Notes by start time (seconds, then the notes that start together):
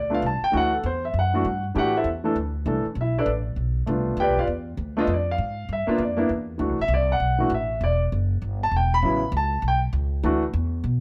Already playing: D2 D5
0.10 A3 B3 D4 F4
0.14 F5
0.22 C2
0.26 A5
0.42 G5, muted upright bass stroke
0.52 D2 E3 A3 D4 F#4
0.57 F#5
0.74 A4
0.83 E2 C5
1.05 E5
1.14 F#2
1.19 F#5
1.34 E3 A3 D4 F#4
1.45 G2
1.75 A2 E3 A3 D4 G4 F#5
1.79 F#4
1.97 E4 A4 C5 E5
2.04 E2
2.24 E3 A3 D4 A4
2.36 D2
2.66 C2 E3 A3 D4 A4
2.85 muted upright bass stroke
2.95 B1
3.01 E4 E5
3.19 D4 A4 B4 D5
3.26 A1
3.56 B1
3.86 C2 A3 B3 D4 F4
4.17 D2 G4 B4 G5
4.21 D5
4.27 B1
4.37 G1 F4 B4 D5 F5
4.47 E2
4.77 D2
4.97 A3 B3 D4 F4 D#5
5.07 F2
5.13 D5
5.31 F5
5.38 G#2
5.69 G2
5.73 E5
5.87 A#3 B3 D4 F4, muted upright bass stroke
5.98 F2 D5
6.17 A#3 B3 D4 E4
6.29 E2
6.58 D2 E3 A3 D4 F#4
6.69 C2
6.79 A1 E5
6.88 C2
6.94 D5
7.12 F#5
7.20 B1
7.38 E3 A3 D4 F#4
7.50 A1
7.54 E5
7.81 E1 D5
8.12 F#1
8.42 G1
8.63 A5
8.71 E1
8.77 G5
8.94 B5
9.02 A1 C#3 F#3 B3 E4
9.32 C#2
9.37 A5
9.62 B1
9.68 G5
9.93 C#2
10.23 D2 E3 A3 D4 F#4
10.54 E2
10.84 B2